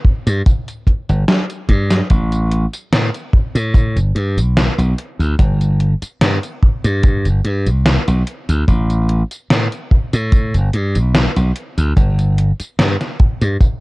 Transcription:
0.05 kick
0.27 G2, closed hi-hat, tambourine
0.46 kick, closed hi-hat, tambourine
0.68 closed hi-hat, tambourine
0.87 kick, closed hi-hat
1.09 G1, closed hi-hat, tambourine
1.28 snare, closed hi-hat, tambourine
1.50 closed hi-hat, tambourine
1.69 G2, kick, closed hi-hat
1.91 snare, closed hi-hat, tambourine
2.10 A1, kick, closed hi-hat, tambourine
2.32 closed hi-hat, tambourine
2.51 closed hi-hat
2.73 closed hi-hat, tambourine
2.92 A2, snare, closed hi-hat, tambourine
3.14 closed hi-hat, tambourine
3.33 kick
3.55 A2, closed hi-hat, tambourine
3.74 kick, closed hi-hat, tambourine
3.96 G1, closed hi-hat, tambourine
4.15 G2, closed hi-hat
4.37 B1, closed hi-hat, tambourine
4.57 snare, closed hi-hat, tambourine
4.78 B1, closed hi-hat, tambourine
4.98 closed hi-hat
5.19 D2, closed hi-hat, tambourine
5.39 G1, kick, closed hi-hat, tambourine
5.61 closed hi-hat, tambourine
5.80 closed hi-hat
6.02 muted slap bass stroke, closed hi-hat, tambourine
6.21 G2, snare, closed hi-hat, tambourine
6.43 closed hi-hat, tambourine
6.63 kick
6.84 G2, closed hi-hat, tambourine
7.03 kick, closed hi-hat, tambourine
7.25 G1, closed hi-hat, tambourine
7.44 G2, closed hi-hat
7.66 C2, closed hi-hat, tambourine
7.86 snare, closed hi-hat, tambourine
8.08 B1, closed hi-hat, tambourine
8.27 closed hi-hat
8.49 D2, closed hi-hat, tambourine
8.68 A1, kick, closed hi-hat, tambourine
8.90 closed hi-hat, tambourine
9.09 closed hi-hat
9.31 closed hi-hat, tambourine
9.50 A2, snare, closed hi-hat, tambourine
9.72 closed hi-hat, tambourine
9.91 kick
10.13 A2, closed hi-hat, tambourine
10.32 kick, closed hi-hat, tambourine
10.54 G1, closed hi-hat, tambourine
10.73 G2, closed hi-hat
10.95 B1, closed hi-hat, tambourine
11.14 snare, closed hi-hat, tambourine
11.36 B1, closed hi-hat, tambourine
11.56 closed hi-hat
11.77 D2, closed hi-hat, tambourine
11.96 G1, kick, closed hi-hat, tambourine
12.19 closed hi-hat, tambourine
12.38 closed hi-hat
12.60 muted slap bass stroke, closed hi-hat, tambourine
12.79 G2, snare, closed hi-hat, tambourine
13.01 snare, closed hi-hat, tambourine
13.20 kick, closed hi-hat
13.42 G2, closed hi-hat, tambourine
13.61 kick, closed hi-hat, tambourine

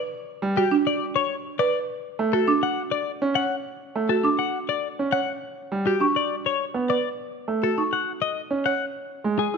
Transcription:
0.42 G3
0.57 F#4 G4
0.71 D4
0.87 D5
1.16 C#5
1.59 B4 D5
2.19 A3
2.33 F#4 A4
2.48 D4 D6
2.63 F#5
2.92 D5
3.22 C#4
3.35 C#5 F#5
3.95 A3
4.09 F#4 A4
4.24 D4 D6
4.39 F#5
4.69 D5
4.99 C#4
5.12 C#5 F#5
5.72 G3
5.86 F#4 G4
6.00 D4 C#6
6.16 D5
6.46 C#5
6.74 B3
6.89 B4 D5
7.48 A3
7.63 F#4 A4
7.78 D#4 C#6
7.93 F#5
8.22 D#5
8.51 C#4
8.66 C#5 F#5
9.24 G#3
9.39 G#4
9.54 E4

